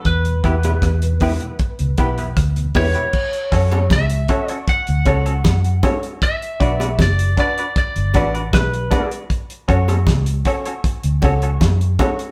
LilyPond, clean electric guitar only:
\new Staff \with { instrumentName = "Clean electric guitar" } { \time 4/4 \key fis \phrygian \tempo 4 = 78 r8 <b e' g' b'>16 <b e' g' b'>16 r8 <b e' g' b'>16 r8. <b e' g' b'>16 <b e' g' b'>16 r8 <b e' g' b'>16 <b e' g' b'>16 | r8 <cis' fis' a' cis''>16 <cis' fis' a' cis''>16 r8 <cis' fis' a' cis''>16 <cis' fis' a' cis''>16 r8 <cis' fis' a' cis''>16 <cis' fis' a' cis''>16 r8 <cis' fis' a' cis''>16 r16 | r8 <d' fis' b' d''>16 <d' fis' b' d''>16 r8 <d' fis' b' d''>16 <d' fis' b' d''>16 r8 <d' fis' b' d''>16 <d' fis' b' d''>16 r8 <d' fis' b' d''>16 r16 | r8 <cis' fis' a' cis''>16 <cis' fis' a' cis''>16 r8 <cis' fis' a' cis''>16 <cis' fis' a' cis''>16 r8 <cis' fis' a' cis''>16 <cis' fis' a' cis''>16 r8 <cis' fis' a' cis''>16 r16 | }